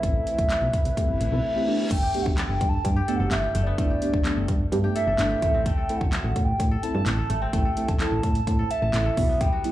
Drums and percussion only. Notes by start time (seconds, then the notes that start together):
0.03 kick, closed hi-hat
0.27 closed hi-hat
0.39 kick, closed hi-hat
0.49 snare, clap, closed hi-hat
0.73 kick, closed hi-hat
0.85 closed hi-hat
0.97 kick, closed hi-hat
1.21 closed hi-hat
1.91 kick, closed hi-hat, crash
2.14 closed hi-hat
2.26 kick
2.37 snare, clap, closed hi-hat
2.61 kick, closed hi-hat
2.85 kick, closed hi-hat
3.08 closed hi-hat
3.31 snare, clap, closed hi-hat
3.55 closed hi-hat
3.78 kick, closed hi-hat
4.02 closed hi-hat
4.14 kick
4.24 snare, clap, closed hi-hat
4.48 kick, closed hi-hat
4.72 closed hi-hat
4.96 closed hi-hat
5.18 snare, clap, closed hi-hat
5.42 kick, closed hi-hat
5.66 kick, closed hi-hat
5.89 closed hi-hat
6.01 kick
6.12 snare, clap, closed hi-hat
6.36 kick, closed hi-hat
6.60 kick, closed hi-hat
6.83 closed hi-hat
7.06 snare, clap, closed hi-hat
7.30 closed hi-hat
7.53 kick, closed hi-hat
7.77 closed hi-hat
7.88 kick, closed hi-hat
7.99 snare, clap, closed hi-hat
8.23 kick, closed hi-hat
8.35 closed hi-hat
8.47 kick, closed hi-hat
8.71 closed hi-hat
8.93 snare, clap, closed hi-hat
9.17 kick, open hi-hat
9.41 kick, closed hi-hat
9.64 closed hi-hat